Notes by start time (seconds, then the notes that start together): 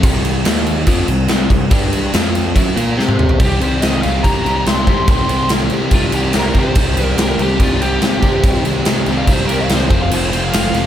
0.03 C2 C3 G3 C4, kick, crash
0.25 crash
0.44 D#2 D#3 A#3 D#4, snare, crash
0.67 crash
0.87 F2 F3 C4 F4, kick, crash
1.07 C2 C3 G3, crash
1.28 C2 C3 G3 C4, snare, crash
1.50 C2 C3 G3, kick, crash
1.70 G2 G3 D4 G4, kick, crash
1.93 crash
2.13 F2 F3 C4 F4, snare, crash
2.35 snare, crash
2.55 F#2 F#3 C#4 F#4, kick, crash
2.76 A#2 A#3 F4 A#4, crash
2.97 C3 C4 G4 C5, snare
3.08 high tom
3.19 mid tom
3.29 floor tom
3.40 C2 C3 D#3 G3 C4 G4, kick, crash
3.60 C2 C3 D#3 G3 C4 G4 C5, crash
3.82 C2 C3 D#3 G3 C4 G4 D#5, snare, crash
4.02 C2 C3 D#3 G3 C4 G4 F5, crash
4.23 C2 C3 D#3 G3 C4 G4 A#5, kick, crash
4.45 C2 C3 D#3 G3 C4 G4, crash
4.66 C2 C3 D#3 G3 C4 G4 C6, snare, crash
4.87 C3 D#3 G3 C4 G4, kick, crash
5.08 C2 C3 D#3 G3 C4 G4 C6, kick, crash
5.29 C2 C3 D#3 G3 C4 G4, crash
5.49 C2 C3 D#3 G3 C4 G4, snare, crash
5.70 C2 C3 D#3 G3 C4 G4, crash
5.91 C2 C3 D#3 G3 C4 F4 G4, kick, crash
6.12 C2 C3 D#3 G3 C4 G4, crash
6.33 C2 C3 D#3 G3 C4 G4, snare, crash
6.38 A#4
6.54 C3 D#3 G3 C4, kick, crash
6.59 G4 C5
6.75 C2 C3 D#3 G3 C4 G4, kick, crash
6.96 C2 C3 D#3 G3 C4, crash
7.00 G4
7.06 A#4
7.17 C2 C3 D#3 G3 C4 G4, snare, crash
7.22 A#4
7.38 C2 C3 D#3 G3 C4 G4, crash
7.42 G4
7.59 C2 C3 D#3 G3 C4 G4, kick, crash
7.63 F4
7.79 C2 C3 D#3 G3 C4 G4, crash
8.01 C2 C3 D#3 G3 C4 G4, snare, crash
8.22 C3 D#3 G3 C4 G4, kick, crash
8.44 C2 C3 D#3 G3 C4 G4, kick, crash
8.63 C2 C3 D#3 G3 C4 G4, crash
8.85 C2 C3 D#3 G3 C4 G4, snare, crash
9.06 C2 C3 D#3 G3 C4 G4, crash
9.17 F5
9.26 C2 C3 D#3 G3 C4 G4, kick, crash
9.33 C5
9.47 C2 C3 D#3 G3 C4 G4 A#4, crash
9.61 F5
9.68 C2 C3 D#3 G3 C4 G4, snare, crash
9.75 C5
9.89 F1 F2 C3 F3 A3 C4 F4 C5, kick, crash
10.02 F5
10.10 F1 F2 C3 F3 A3 C4 F4 C5, crash
10.30 F1 F2 C3 F3 A3 C4 C5, crash
10.34 F4
10.44 F5
10.53 F1 F2 C3 F3 A3 C4 F4, snare, crash
10.73 F1 F2 C3 F3 A3 C4 F4, snare, crash